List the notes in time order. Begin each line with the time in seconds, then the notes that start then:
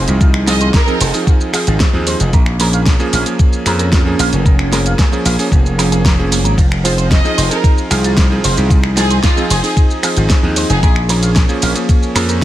Already playing: F3 C4 D#4 G#4 F5, sub drop
0.08 C2 D#4, closed hi-hat, shaker
0.21 F4, kick, closed hi-hat, shaker
0.34 finger snap
0.47 F3 C4 D#4 F4 G#4 D#5, snare, open hi-hat, shaker
0.61 C5, closed hi-hat, shaker
0.74 D#4 A#4, kick, snare, closed hi-hat, shaker
0.86 F3 C4 D#4 G#4, shaker
1.00 F1 C5, open hi-hat, shaker
1.13 F3 C4 D#4 G#4, open hi-hat, shaker
1.27 kick, closed hi-hat, shaker
1.41 shaker
1.53 F3 C4 D#4 G#4 F5, finger snap, open hi-hat, shaker
1.67 G#1 F4, closed hi-hat, shaker
1.80 C4, kick, snare, closed hi-hat, shaker
1.93 D#2 F3 C4 D#4 G#4
2.07 C5, open hi-hat, shaker
2.20 F1 D#4, closed hi-hat, shaker
2.33 A#1 C#4 A#4 G#5, kick, closed hi-hat, shaker
2.46 finger snap
2.60 F3 A#3 C#4 G#4 A#4, open hi-hat, shaker
2.73 F5, closed hi-hat, shaker
2.86 G#4, kick, snare, closed hi-hat, shaker
2.99 F3 A#3 C#4 F4 G#4, shaker
3.13 A#1 F5, open hi-hat, shaker
3.26 F3 A#3 C#4 G#4, closed hi-hat, shaker
3.39 kick, closed hi-hat, shaker
3.53 shaker
3.66 F2 F3 A#3 C#4 G#4 A#5, finger snap, open hi-hat, shaker
3.79 A#4, closed hi-hat, shaker
3.92 F4, kick, snare, closed hi-hat, shaker
4.05 F3 A#3 C#4 G#4
4.19 A#1 F5, open hi-hat, shaker
4.33 F1 G#4, closed hi-hat, shaker
4.46 A#4, kick, closed hi-hat, shaker
4.59 finger snap
4.71 F3 A#3 C#4 G#4 A#4, snare, open hi-hat, shaker
4.86 F5, closed hi-hat, shaker
4.99 G#4, kick, snare, closed hi-hat, shaker
5.11 F3 A#3 C#4 F4 G#4, shaker
5.25 A#1 F5, open hi-hat, shaker
5.38 F3 A#3 C#4 G#4, open hi-hat, shaker
5.52 F1, kick, shaker
5.66 shaker
5.78 F3 A#3 C#4 G#4 A#4, finger snap, open hi-hat, shaker
5.92 G#4, closed hi-hat, shaker
6.05 A#4, kick, snare, closed hi-hat, shaker
6.18 F3 A#3 C#4 G#4
6.32 A#3, open hi-hat, shaker
6.45 G#1 A#4, closed hi-hat, shaker
6.58 F1 D#4 F4 G#4 F5, kick, closed hi-hat, ride, shaker
6.72 finger snap
6.84 F3 C4 D#4 F4 G#4 C5, open hi-hat, ride, shaker
6.98 C5, closed hi-hat, shaker
7.11 D#4 D#5, kick, snare, closed hi-hat, ride, shaker
7.24 F3 C4 D#4 G#4, shaker
7.38 F1 C5, open hi-hat, ride, shaker
7.50 F3 C4 D#4 G#4 A#4, closed hi-hat, shaker
7.64 kick, closed hi-hat, ride, shaker
7.78 shaker
7.90 C2 F3 C4 D#4 G#4 F5, finger snap, open hi-hat, ride, shaker
8.04 F4, closed hi-hat, shaker
8.17 C4, kick, snare, closed hi-hat, ride, shaker
8.30 F3 C4 D#4 G#4
8.44 F1 C5, open hi-hat, ride, shaker
8.57 C2 D#4, closed hi-hat, shaker
8.70 F4 D#5, kick, closed hi-hat, ride, shaker
8.84 finger snap
8.96 F3 C4 D#4 F4 G#4, snare, open hi-hat, ride, shaker
9.11 C5, closed hi-hat, shaker
9.23 D#4 F4, kick, snare, closed hi-hat, ride, shaker
9.36 F3 C4 D#4 G#4, shaker
9.50 F1 G#4 C5, open hi-hat, ride, shaker
9.63 F3 C4 D#4 G#4, open hi-hat, shaker
9.77 kick, closed hi-hat, ride, shaker
9.91 shaker
10.03 F3 C4 D#4 G#4 F5, finger snap, open hi-hat, ride, shaker
10.17 G#1 F4, closed hi-hat, shaker
10.30 C4, kick, snare, closed hi-hat, ride, shaker
10.43 D#2 F3 C4 D#4 G#4
10.56 C5, open hi-hat, ride, shaker
10.70 F1 D#4 G#4, closed hi-hat, shaker
10.83 A#1 A#3 G#4 A#4 C#5, kick, closed hi-hat, ride, shaker
10.96 finger snap
11.09 F3 A#3 C#4 G#4 A#4, open hi-hat, ride, shaker
11.23 F5, closed hi-hat, shaker
11.36 G#4, kick, snare, closed hi-hat, ride, shaker
11.48 F3 A#3 C#4 F4 G#4, shaker
11.62 A#1 F5, open hi-hat, ride, shaker
11.75 F3 A#3 C#4 G#4, closed hi-hat, shaker
11.89 kick, closed hi-hat, ride, shaker
12.03 shaker
12.15 F2 F3 A#3 C#4 G#4 A#5, finger snap, open hi-hat, ride, shaker
12.29 A#4, closed hi-hat, shaker